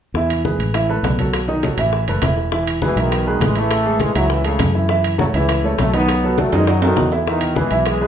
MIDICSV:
0, 0, Header, 1, 5, 480
1, 0, Start_track
1, 0, Key_signature, 4, "major"
1, 0, Tempo, 296589
1, 244, Time_signature, 4, 2, 24, 8
1, 13062, End_track
2, 0, Start_track
2, 0, Title_t, "Grand piano"
2, 0, Program_c, 0, 0
2, 260, Note_on_c, 0, 52, 63
2, 261, Note_on_c, 0, 64, 70
2, 266, Note_on_c, 0, 76, 64
2, 648, Note_off_c, 0, 52, 0
2, 648, Note_off_c, 0, 64, 0
2, 652, Note_off_c, 0, 76, 0
2, 718, Note_on_c, 0, 56, 53
2, 730, Note_on_c, 0, 71, 53
2, 731, Note_on_c, 0, 68, 55
2, 1115, Note_off_c, 0, 56, 0
2, 1122, Note_off_c, 0, 71, 0
2, 1123, Note_off_c, 0, 68, 0
2, 1201, Note_on_c, 0, 52, 63
2, 1206, Note_on_c, 0, 64, 66
2, 1207, Note_on_c, 0, 76, 66
2, 1400, Note_off_c, 0, 52, 0
2, 1403, Note_off_c, 0, 64, 0
2, 1404, Note_off_c, 0, 76, 0
2, 1440, Note_on_c, 0, 57, 60
2, 1449, Note_on_c, 0, 69, 62
2, 1456, Note_on_c, 0, 71, 66
2, 1837, Note_off_c, 0, 57, 0
2, 1842, Note_off_c, 0, 69, 0
2, 1846, Note_off_c, 0, 71, 0
2, 1924, Note_on_c, 0, 54, 50
2, 1934, Note_on_c, 0, 66, 53
2, 1938, Note_on_c, 0, 69, 58
2, 2319, Note_off_c, 0, 54, 0
2, 2325, Note_off_c, 0, 66, 0
2, 2328, Note_off_c, 0, 69, 0
2, 2389, Note_on_c, 0, 51, 63
2, 2400, Note_on_c, 0, 75, 63
2, 2403, Note_on_c, 0, 63, 72
2, 2593, Note_off_c, 0, 51, 0
2, 2600, Note_off_c, 0, 75, 0
2, 2602, Note_off_c, 0, 63, 0
2, 2644, Note_on_c, 0, 54, 58
2, 2652, Note_on_c, 0, 66, 55
2, 2659, Note_on_c, 0, 69, 54
2, 2843, Note_off_c, 0, 54, 0
2, 2847, Note_off_c, 0, 66, 0
2, 2851, Note_off_c, 0, 69, 0
2, 2882, Note_on_c, 0, 52, 76
2, 2893, Note_on_c, 0, 76, 78
2, 2895, Note_on_c, 0, 64, 70
2, 3278, Note_off_c, 0, 52, 0
2, 3285, Note_off_c, 0, 76, 0
2, 3286, Note_off_c, 0, 64, 0
2, 3367, Note_on_c, 0, 57, 61
2, 3371, Note_on_c, 0, 69, 63
2, 3381, Note_on_c, 0, 71, 62
2, 3564, Note_off_c, 0, 57, 0
2, 3567, Note_off_c, 0, 69, 0
2, 3572, Note_off_c, 0, 71, 0
2, 3609, Note_on_c, 0, 52, 60
2, 3612, Note_on_c, 0, 64, 62
2, 3616, Note_on_c, 0, 76, 63
2, 4002, Note_off_c, 0, 52, 0
2, 4004, Note_off_c, 0, 64, 0
2, 4007, Note_off_c, 0, 76, 0
2, 4073, Note_on_c, 0, 52, 74
2, 4077, Note_on_c, 0, 64, 67
2, 4082, Note_on_c, 0, 76, 68
2, 4473, Note_off_c, 0, 52, 0
2, 4475, Note_off_c, 0, 64, 0
2, 4478, Note_off_c, 0, 76, 0
2, 4553, Note_on_c, 0, 56, 64
2, 4564, Note_on_c, 0, 68, 64
2, 4565, Note_on_c, 0, 71, 62
2, 4756, Note_off_c, 0, 56, 0
2, 4762, Note_off_c, 0, 68, 0
2, 4763, Note_off_c, 0, 71, 0
2, 4795, Note_on_c, 0, 52, 76
2, 4803, Note_on_c, 0, 64, 70
2, 4806, Note_on_c, 0, 76, 67
2, 5194, Note_off_c, 0, 52, 0
2, 5199, Note_off_c, 0, 64, 0
2, 5200, Note_off_c, 0, 76, 0
2, 5288, Note_on_c, 0, 56, 65
2, 5294, Note_on_c, 0, 71, 65
2, 5298, Note_on_c, 0, 68, 67
2, 5682, Note_off_c, 0, 56, 0
2, 5685, Note_off_c, 0, 71, 0
2, 5687, Note_off_c, 0, 68, 0
2, 5761, Note_on_c, 0, 52, 58
2, 5768, Note_on_c, 0, 64, 64
2, 5776, Note_on_c, 0, 76, 59
2, 6157, Note_off_c, 0, 52, 0
2, 6161, Note_off_c, 0, 64, 0
2, 6166, Note_off_c, 0, 76, 0
2, 6233, Note_on_c, 0, 56, 65
2, 6243, Note_on_c, 0, 68, 61
2, 6245, Note_on_c, 0, 69, 60
2, 6633, Note_off_c, 0, 56, 0
2, 6639, Note_off_c, 0, 68, 0
2, 6640, Note_off_c, 0, 69, 0
2, 6726, Note_on_c, 0, 64, 77
2, 6727, Note_on_c, 0, 52, 70
2, 6733, Note_on_c, 0, 76, 80
2, 7120, Note_off_c, 0, 64, 0
2, 7121, Note_off_c, 0, 52, 0
2, 7124, Note_off_c, 0, 76, 0
2, 7190, Note_on_c, 0, 56, 66
2, 7197, Note_on_c, 0, 68, 68
2, 7202, Note_on_c, 0, 69, 65
2, 7590, Note_off_c, 0, 56, 0
2, 7595, Note_off_c, 0, 68, 0
2, 7598, Note_off_c, 0, 69, 0
2, 7675, Note_on_c, 0, 52, 67
2, 7686, Note_on_c, 0, 64, 67
2, 7688, Note_on_c, 0, 76, 59
2, 7877, Note_off_c, 0, 52, 0
2, 7884, Note_off_c, 0, 64, 0
2, 7885, Note_off_c, 0, 76, 0
2, 7918, Note_on_c, 0, 52, 71
2, 7925, Note_on_c, 0, 64, 70
2, 7926, Note_on_c, 0, 76, 78
2, 8315, Note_off_c, 0, 52, 0
2, 8319, Note_off_c, 0, 64, 0
2, 8320, Note_off_c, 0, 76, 0
2, 8405, Note_on_c, 0, 57, 65
2, 8418, Note_on_c, 0, 69, 60
2, 8420, Note_on_c, 0, 73, 62
2, 8602, Note_off_c, 0, 57, 0
2, 8610, Note_off_c, 0, 69, 0
2, 8611, Note_off_c, 0, 73, 0
2, 8655, Note_on_c, 0, 64, 79
2, 8656, Note_on_c, 0, 52, 76
2, 8664, Note_on_c, 0, 76, 85
2, 9045, Note_off_c, 0, 52, 0
2, 9045, Note_off_c, 0, 64, 0
2, 9050, Note_off_c, 0, 76, 0
2, 9126, Note_on_c, 0, 57, 70
2, 9136, Note_on_c, 0, 69, 64
2, 9138, Note_on_c, 0, 73, 68
2, 9520, Note_off_c, 0, 57, 0
2, 9525, Note_off_c, 0, 69, 0
2, 9527, Note_off_c, 0, 73, 0
2, 9606, Note_on_c, 0, 51, 63
2, 9607, Note_on_c, 0, 75, 59
2, 9609, Note_on_c, 0, 63, 72
2, 9999, Note_off_c, 0, 51, 0
2, 10000, Note_off_c, 0, 75, 0
2, 10001, Note_off_c, 0, 63, 0
2, 10096, Note_on_c, 0, 54, 65
2, 10108, Note_on_c, 0, 66, 65
2, 10110, Note_on_c, 0, 69, 63
2, 10485, Note_off_c, 0, 54, 0
2, 10492, Note_off_c, 0, 66, 0
2, 10493, Note_off_c, 0, 69, 0
2, 10569, Note_on_c, 0, 51, 76
2, 10580, Note_on_c, 0, 75, 73
2, 10582, Note_on_c, 0, 63, 79
2, 10961, Note_off_c, 0, 51, 0
2, 10968, Note_off_c, 0, 75, 0
2, 10969, Note_off_c, 0, 63, 0
2, 11047, Note_on_c, 0, 54, 69
2, 11053, Note_on_c, 0, 66, 64
2, 11059, Note_on_c, 0, 69, 63
2, 11439, Note_off_c, 0, 54, 0
2, 11443, Note_off_c, 0, 66, 0
2, 11447, Note_off_c, 0, 69, 0
2, 11521, Note_on_c, 0, 52, 64
2, 11525, Note_on_c, 0, 64, 65
2, 11532, Note_on_c, 0, 76, 67
2, 11719, Note_off_c, 0, 52, 0
2, 11721, Note_off_c, 0, 64, 0
2, 11726, Note_off_c, 0, 76, 0
2, 11761, Note_on_c, 0, 52, 69
2, 11770, Note_on_c, 0, 64, 70
2, 11772, Note_on_c, 0, 76, 71
2, 12156, Note_off_c, 0, 52, 0
2, 12161, Note_off_c, 0, 64, 0
2, 12162, Note_off_c, 0, 76, 0
2, 12243, Note_on_c, 0, 56, 63
2, 12247, Note_on_c, 0, 68, 64
2, 12248, Note_on_c, 0, 71, 62
2, 12440, Note_off_c, 0, 56, 0
2, 12442, Note_off_c, 0, 68, 0
2, 12443, Note_off_c, 0, 71, 0
2, 12480, Note_on_c, 0, 52, 81
2, 12483, Note_on_c, 0, 64, 74
2, 12486, Note_on_c, 0, 76, 76
2, 12875, Note_off_c, 0, 52, 0
2, 12876, Note_off_c, 0, 64, 0
2, 12878, Note_off_c, 0, 76, 0
2, 12959, Note_on_c, 0, 56, 71
2, 12970, Note_on_c, 0, 68, 66
2, 12972, Note_on_c, 0, 71, 59
2, 13062, Note_off_c, 0, 56, 0
2, 13062, Note_off_c, 0, 68, 0
2, 13062, Note_off_c, 0, 71, 0
2, 13062, End_track
3, 0, Start_track
3, 0, Title_t, "Trombone section"
3, 0, Program_c, 1, 61
3, 4596, Note_on_c, 1, 47, 59
3, 4615, Note_on_c, 1, 52, 81
3, 4806, Note_off_c, 1, 47, 0
3, 4816, Note_off_c, 1, 52, 0
3, 4841, Note_on_c, 1, 47, 66
3, 4852, Note_on_c, 1, 51, 85
3, 5544, Note_off_c, 1, 47, 0
3, 5549, Note_on_c, 1, 52, 75
3, 5550, Note_off_c, 1, 51, 0
3, 5554, Note_on_c, 1, 56, 85
3, 5773, Note_off_c, 1, 52, 0
3, 5781, Note_off_c, 1, 56, 0
3, 5785, Note_on_c, 1, 57, 94
3, 5792, Note_on_c, 1, 52, 77
3, 6480, Note_off_c, 1, 52, 0
3, 6496, Note_off_c, 1, 57, 0
3, 6499, Note_on_c, 1, 52, 66
3, 6500, Note_on_c, 1, 56, 85
3, 6719, Note_on_c, 1, 54, 86
3, 6734, Note_off_c, 1, 52, 0
3, 6734, Note_off_c, 1, 56, 0
3, 6735, Note_on_c, 1, 51, 69
3, 6946, Note_off_c, 1, 54, 0
3, 6955, Note_off_c, 1, 51, 0
3, 6962, Note_on_c, 1, 52, 79
3, 6970, Note_on_c, 1, 49, 61
3, 7189, Note_off_c, 1, 49, 0
3, 7205, Note_off_c, 1, 52, 0
3, 7208, Note_on_c, 1, 49, 74
3, 7216, Note_on_c, 1, 45, 59
3, 7654, Note_off_c, 1, 49, 0
3, 7658, Note_off_c, 1, 45, 0
3, 8392, Note_on_c, 1, 54, 78
3, 8408, Note_on_c, 1, 49, 61
3, 8503, Note_off_c, 1, 54, 0
3, 8516, Note_off_c, 1, 49, 0
3, 8660, Note_on_c, 1, 52, 79
3, 8671, Note_on_c, 1, 49, 64
3, 9323, Note_off_c, 1, 52, 0
3, 9329, Note_off_c, 1, 49, 0
3, 9390, Note_on_c, 1, 57, 83
3, 9400, Note_on_c, 1, 54, 66
3, 9618, Note_off_c, 1, 57, 0
3, 9623, Note_off_c, 1, 54, 0
3, 9628, Note_on_c, 1, 59, 87
3, 9640, Note_on_c, 1, 54, 65
3, 10287, Note_off_c, 1, 59, 0
3, 10293, Note_off_c, 1, 54, 0
3, 10356, Note_on_c, 1, 57, 78
3, 10362, Note_on_c, 1, 54, 70
3, 10581, Note_off_c, 1, 57, 0
3, 10584, Note_off_c, 1, 54, 0
3, 10592, Note_on_c, 1, 56, 82
3, 10603, Note_on_c, 1, 52, 59
3, 10819, Note_off_c, 1, 56, 0
3, 10824, Note_off_c, 1, 52, 0
3, 10827, Note_on_c, 1, 54, 81
3, 10839, Note_on_c, 1, 51, 63
3, 11046, Note_off_c, 1, 51, 0
3, 11056, Note_off_c, 1, 54, 0
3, 11065, Note_on_c, 1, 51, 83
3, 11072, Note_on_c, 1, 47, 63
3, 11502, Note_off_c, 1, 51, 0
3, 11505, Note_off_c, 1, 47, 0
3, 11781, Note_on_c, 1, 51, 75
3, 11800, Note_on_c, 1, 47, 58
3, 12220, Note_off_c, 1, 51, 0
3, 12229, Note_off_c, 1, 47, 0
3, 12267, Note_on_c, 1, 52, 81
3, 12281, Note_on_c, 1, 47, 60
3, 12702, Note_off_c, 1, 52, 0
3, 12710, Note_off_c, 1, 47, 0
3, 12753, Note_on_c, 1, 52, 66
3, 12753, Note_on_c, 1, 56, 79
3, 13062, Note_off_c, 1, 52, 0
3, 13062, Note_off_c, 1, 56, 0
3, 13062, End_track
4, 0, Start_track
4, 0, Title_t, "Fingered electric bass"
4, 0, Program_c, 2, 33
4, 230, Note_on_c, 2, 40, 76
4, 907, Note_off_c, 2, 40, 0
4, 949, Note_on_c, 2, 33, 81
4, 1627, Note_off_c, 2, 33, 0
4, 1670, Note_on_c, 2, 35, 74
4, 2790, Note_off_c, 2, 35, 0
4, 2872, Note_on_c, 2, 33, 80
4, 3326, Note_off_c, 2, 33, 0
4, 3363, Note_on_c, 2, 30, 63
4, 3588, Note_off_c, 2, 30, 0
4, 3596, Note_on_c, 2, 28, 75
4, 4714, Note_off_c, 2, 28, 0
4, 4794, Note_on_c, 2, 35, 75
4, 5470, Note_off_c, 2, 35, 0
4, 5514, Note_on_c, 2, 33, 78
4, 6632, Note_off_c, 2, 33, 0
4, 6724, Note_on_c, 2, 37, 77
4, 7395, Note_off_c, 2, 37, 0
4, 7434, Note_on_c, 2, 42, 81
4, 8551, Note_off_c, 2, 42, 0
4, 8638, Note_on_c, 2, 37, 80
4, 9311, Note_off_c, 2, 37, 0
4, 9360, Note_on_c, 2, 35, 76
4, 10473, Note_off_c, 2, 35, 0
4, 10565, Note_on_c, 2, 42, 84
4, 11234, Note_off_c, 2, 42, 0
4, 11280, Note_on_c, 2, 40, 73
4, 12393, Note_off_c, 2, 40, 0
4, 12485, Note_on_c, 2, 35, 79
4, 13062, Note_off_c, 2, 35, 0
4, 13062, End_track
5, 0, Start_track
5, 0, Title_t, "Drums"
5, 241, Note_on_c, 9, 60, 55
5, 244, Note_on_c, 9, 63, 28
5, 403, Note_off_c, 9, 60, 0
5, 406, Note_off_c, 9, 63, 0
5, 491, Note_on_c, 9, 65, 84
5, 493, Note_on_c, 9, 63, 27
5, 653, Note_off_c, 9, 65, 0
5, 655, Note_off_c, 9, 63, 0
5, 724, Note_on_c, 9, 60, 47
5, 727, Note_on_c, 9, 63, 69
5, 727, Note_on_c, 9, 66, 42
5, 886, Note_off_c, 9, 60, 0
5, 889, Note_off_c, 9, 63, 0
5, 889, Note_off_c, 9, 66, 0
5, 971, Note_on_c, 9, 63, 31
5, 971, Note_on_c, 9, 65, 60
5, 1132, Note_off_c, 9, 65, 0
5, 1133, Note_off_c, 9, 63, 0
5, 1200, Note_on_c, 9, 60, 57
5, 1203, Note_on_c, 9, 65, 78
5, 1217, Note_on_c, 9, 63, 29
5, 1362, Note_off_c, 9, 60, 0
5, 1365, Note_off_c, 9, 65, 0
5, 1379, Note_off_c, 9, 63, 0
5, 1450, Note_on_c, 9, 63, 31
5, 1612, Note_off_c, 9, 63, 0
5, 1684, Note_on_c, 9, 65, 59
5, 1684, Note_on_c, 9, 66, 77
5, 1692, Note_on_c, 9, 60, 53
5, 1692, Note_on_c, 9, 61, 63
5, 1698, Note_on_c, 9, 63, 60
5, 1846, Note_off_c, 9, 65, 0
5, 1846, Note_off_c, 9, 66, 0
5, 1854, Note_off_c, 9, 60, 0
5, 1854, Note_off_c, 9, 61, 0
5, 1860, Note_off_c, 9, 63, 0
5, 1923, Note_on_c, 9, 65, 57
5, 1929, Note_on_c, 9, 63, 59
5, 2085, Note_off_c, 9, 65, 0
5, 2090, Note_off_c, 9, 63, 0
5, 2160, Note_on_c, 9, 60, 62
5, 2160, Note_on_c, 9, 65, 83
5, 2184, Note_on_c, 9, 63, 32
5, 2322, Note_off_c, 9, 60, 0
5, 2322, Note_off_c, 9, 65, 0
5, 2346, Note_off_c, 9, 63, 0
5, 2412, Note_on_c, 9, 60, 31
5, 2421, Note_on_c, 9, 63, 32
5, 2574, Note_off_c, 9, 60, 0
5, 2583, Note_off_c, 9, 63, 0
5, 2639, Note_on_c, 9, 65, 55
5, 2639, Note_on_c, 9, 66, 48
5, 2641, Note_on_c, 9, 60, 53
5, 2662, Note_on_c, 9, 63, 80
5, 2801, Note_off_c, 9, 65, 0
5, 2801, Note_off_c, 9, 66, 0
5, 2803, Note_off_c, 9, 60, 0
5, 2823, Note_off_c, 9, 63, 0
5, 2876, Note_on_c, 9, 65, 78
5, 2881, Note_on_c, 9, 60, 35
5, 2902, Note_on_c, 9, 63, 30
5, 3038, Note_off_c, 9, 65, 0
5, 3043, Note_off_c, 9, 60, 0
5, 3064, Note_off_c, 9, 63, 0
5, 3119, Note_on_c, 9, 60, 55
5, 3136, Note_on_c, 9, 63, 28
5, 3281, Note_off_c, 9, 60, 0
5, 3298, Note_off_c, 9, 63, 0
5, 3363, Note_on_c, 9, 65, 71
5, 3365, Note_on_c, 9, 63, 31
5, 3525, Note_off_c, 9, 65, 0
5, 3527, Note_off_c, 9, 63, 0
5, 3589, Note_on_c, 9, 65, 85
5, 3589, Note_on_c, 9, 66, 74
5, 3603, Note_on_c, 9, 63, 67
5, 3604, Note_on_c, 9, 60, 60
5, 3604, Note_on_c, 9, 61, 62
5, 3751, Note_off_c, 9, 65, 0
5, 3751, Note_off_c, 9, 66, 0
5, 3765, Note_off_c, 9, 60, 0
5, 3765, Note_off_c, 9, 61, 0
5, 3765, Note_off_c, 9, 63, 0
5, 3846, Note_on_c, 9, 60, 31
5, 4008, Note_off_c, 9, 60, 0
5, 4079, Note_on_c, 9, 60, 62
5, 4086, Note_on_c, 9, 63, 30
5, 4241, Note_off_c, 9, 60, 0
5, 4248, Note_off_c, 9, 63, 0
5, 4326, Note_on_c, 9, 63, 32
5, 4329, Note_on_c, 9, 65, 88
5, 4487, Note_off_c, 9, 63, 0
5, 4491, Note_off_c, 9, 65, 0
5, 4561, Note_on_c, 9, 63, 78
5, 4562, Note_on_c, 9, 60, 51
5, 4572, Note_on_c, 9, 66, 49
5, 4723, Note_off_c, 9, 63, 0
5, 4724, Note_off_c, 9, 60, 0
5, 4734, Note_off_c, 9, 66, 0
5, 4809, Note_on_c, 9, 65, 65
5, 4971, Note_off_c, 9, 65, 0
5, 5050, Note_on_c, 9, 65, 77
5, 5054, Note_on_c, 9, 60, 58
5, 5212, Note_off_c, 9, 65, 0
5, 5216, Note_off_c, 9, 60, 0
5, 5282, Note_on_c, 9, 63, 29
5, 5444, Note_off_c, 9, 63, 0
5, 5511, Note_on_c, 9, 63, 67
5, 5523, Note_on_c, 9, 65, 70
5, 5523, Note_on_c, 9, 66, 72
5, 5535, Note_on_c, 9, 60, 57
5, 5535, Note_on_c, 9, 61, 74
5, 5673, Note_off_c, 9, 63, 0
5, 5685, Note_off_c, 9, 65, 0
5, 5685, Note_off_c, 9, 66, 0
5, 5697, Note_off_c, 9, 60, 0
5, 5697, Note_off_c, 9, 61, 0
5, 5753, Note_on_c, 9, 65, 62
5, 5915, Note_off_c, 9, 65, 0
5, 5998, Note_on_c, 9, 65, 90
5, 5999, Note_on_c, 9, 63, 31
5, 6006, Note_on_c, 9, 60, 67
5, 6160, Note_off_c, 9, 63, 0
5, 6160, Note_off_c, 9, 65, 0
5, 6168, Note_off_c, 9, 60, 0
5, 6229, Note_on_c, 9, 63, 30
5, 6248, Note_on_c, 9, 60, 34
5, 6391, Note_off_c, 9, 63, 0
5, 6410, Note_off_c, 9, 60, 0
5, 6467, Note_on_c, 9, 63, 76
5, 6478, Note_on_c, 9, 65, 58
5, 6478, Note_on_c, 9, 66, 49
5, 6486, Note_on_c, 9, 60, 51
5, 6629, Note_off_c, 9, 63, 0
5, 6640, Note_off_c, 9, 65, 0
5, 6640, Note_off_c, 9, 66, 0
5, 6648, Note_off_c, 9, 60, 0
5, 6715, Note_on_c, 9, 63, 34
5, 6724, Note_on_c, 9, 65, 83
5, 6729, Note_on_c, 9, 60, 31
5, 6877, Note_off_c, 9, 63, 0
5, 6886, Note_off_c, 9, 65, 0
5, 6891, Note_off_c, 9, 60, 0
5, 6957, Note_on_c, 9, 60, 59
5, 6958, Note_on_c, 9, 63, 32
5, 7119, Note_off_c, 9, 60, 0
5, 7120, Note_off_c, 9, 63, 0
5, 7194, Note_on_c, 9, 65, 70
5, 7199, Note_on_c, 9, 63, 31
5, 7356, Note_off_c, 9, 65, 0
5, 7361, Note_off_c, 9, 63, 0
5, 7430, Note_on_c, 9, 60, 52
5, 7430, Note_on_c, 9, 61, 70
5, 7437, Note_on_c, 9, 65, 91
5, 7437, Note_on_c, 9, 66, 71
5, 7440, Note_on_c, 9, 63, 71
5, 7592, Note_off_c, 9, 60, 0
5, 7592, Note_off_c, 9, 61, 0
5, 7599, Note_off_c, 9, 65, 0
5, 7599, Note_off_c, 9, 66, 0
5, 7602, Note_off_c, 9, 63, 0
5, 7682, Note_on_c, 9, 60, 32
5, 7844, Note_off_c, 9, 60, 0
5, 7914, Note_on_c, 9, 60, 62
5, 7915, Note_on_c, 9, 63, 29
5, 8076, Note_off_c, 9, 60, 0
5, 8077, Note_off_c, 9, 63, 0
5, 8161, Note_on_c, 9, 63, 29
5, 8163, Note_on_c, 9, 65, 84
5, 8323, Note_off_c, 9, 63, 0
5, 8325, Note_off_c, 9, 65, 0
5, 8394, Note_on_c, 9, 60, 50
5, 8401, Note_on_c, 9, 63, 80
5, 8402, Note_on_c, 9, 66, 50
5, 8556, Note_off_c, 9, 60, 0
5, 8563, Note_off_c, 9, 63, 0
5, 8564, Note_off_c, 9, 66, 0
5, 8644, Note_on_c, 9, 65, 61
5, 8652, Note_on_c, 9, 63, 29
5, 8806, Note_off_c, 9, 65, 0
5, 8813, Note_off_c, 9, 63, 0
5, 8882, Note_on_c, 9, 60, 65
5, 8883, Note_on_c, 9, 63, 32
5, 8888, Note_on_c, 9, 65, 83
5, 9043, Note_off_c, 9, 60, 0
5, 9045, Note_off_c, 9, 63, 0
5, 9050, Note_off_c, 9, 65, 0
5, 9114, Note_on_c, 9, 63, 31
5, 9276, Note_off_c, 9, 63, 0
5, 9356, Note_on_c, 9, 63, 62
5, 9362, Note_on_c, 9, 60, 64
5, 9362, Note_on_c, 9, 61, 69
5, 9369, Note_on_c, 9, 65, 65
5, 9369, Note_on_c, 9, 66, 81
5, 9518, Note_off_c, 9, 63, 0
5, 9524, Note_off_c, 9, 60, 0
5, 9524, Note_off_c, 9, 61, 0
5, 9531, Note_off_c, 9, 65, 0
5, 9531, Note_off_c, 9, 66, 0
5, 9606, Note_on_c, 9, 65, 60
5, 9768, Note_off_c, 9, 65, 0
5, 9843, Note_on_c, 9, 63, 30
5, 9848, Note_on_c, 9, 60, 56
5, 9856, Note_on_c, 9, 65, 85
5, 10005, Note_off_c, 9, 63, 0
5, 10009, Note_off_c, 9, 60, 0
5, 10018, Note_off_c, 9, 65, 0
5, 10083, Note_on_c, 9, 63, 31
5, 10100, Note_on_c, 9, 60, 34
5, 10245, Note_off_c, 9, 63, 0
5, 10262, Note_off_c, 9, 60, 0
5, 10323, Note_on_c, 9, 63, 77
5, 10328, Note_on_c, 9, 60, 47
5, 10328, Note_on_c, 9, 65, 67
5, 10485, Note_off_c, 9, 63, 0
5, 10490, Note_off_c, 9, 60, 0
5, 10490, Note_off_c, 9, 65, 0
5, 10556, Note_on_c, 9, 63, 31
5, 10560, Note_on_c, 9, 65, 84
5, 10562, Note_on_c, 9, 60, 34
5, 10718, Note_off_c, 9, 63, 0
5, 10722, Note_off_c, 9, 65, 0
5, 10724, Note_off_c, 9, 60, 0
5, 10799, Note_on_c, 9, 60, 57
5, 10801, Note_on_c, 9, 65, 70
5, 10806, Note_on_c, 9, 63, 28
5, 10961, Note_off_c, 9, 60, 0
5, 10963, Note_off_c, 9, 65, 0
5, 10968, Note_off_c, 9, 63, 0
5, 11032, Note_on_c, 9, 63, 31
5, 11037, Note_on_c, 9, 66, 95
5, 11194, Note_off_c, 9, 63, 0
5, 11199, Note_off_c, 9, 66, 0
5, 11271, Note_on_c, 9, 66, 75
5, 11274, Note_on_c, 9, 63, 68
5, 11279, Note_on_c, 9, 60, 56
5, 11279, Note_on_c, 9, 61, 68
5, 11433, Note_off_c, 9, 66, 0
5, 11435, Note_off_c, 9, 63, 0
5, 11441, Note_off_c, 9, 60, 0
5, 11441, Note_off_c, 9, 61, 0
5, 11520, Note_on_c, 9, 66, 63
5, 11535, Note_on_c, 9, 60, 31
5, 11682, Note_off_c, 9, 66, 0
5, 11696, Note_off_c, 9, 60, 0
5, 11761, Note_on_c, 9, 63, 32
5, 11773, Note_on_c, 9, 60, 66
5, 11922, Note_off_c, 9, 63, 0
5, 11935, Note_off_c, 9, 60, 0
5, 11991, Note_on_c, 9, 65, 87
5, 12006, Note_on_c, 9, 63, 30
5, 12152, Note_off_c, 9, 65, 0
5, 12168, Note_off_c, 9, 63, 0
5, 12225, Note_on_c, 9, 66, 54
5, 12240, Note_on_c, 9, 60, 53
5, 12240, Note_on_c, 9, 63, 81
5, 12387, Note_off_c, 9, 66, 0
5, 12402, Note_off_c, 9, 60, 0
5, 12402, Note_off_c, 9, 63, 0
5, 12472, Note_on_c, 9, 65, 60
5, 12488, Note_on_c, 9, 63, 30
5, 12634, Note_off_c, 9, 65, 0
5, 12650, Note_off_c, 9, 63, 0
5, 12713, Note_on_c, 9, 65, 83
5, 12721, Note_on_c, 9, 63, 27
5, 12727, Note_on_c, 9, 60, 62
5, 12875, Note_off_c, 9, 65, 0
5, 12883, Note_off_c, 9, 63, 0
5, 12889, Note_off_c, 9, 60, 0
5, 12964, Note_on_c, 9, 63, 31
5, 13062, Note_off_c, 9, 63, 0
5, 13062, End_track
0, 0, End_of_file